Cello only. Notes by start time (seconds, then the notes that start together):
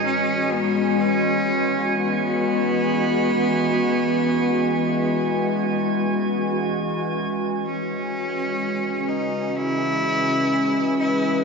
0.06 C#4
0.53 B3
1.01 C#4
1.96 B3
7.66 C#4
9.09 D#4
9.56 E4
11.00 E4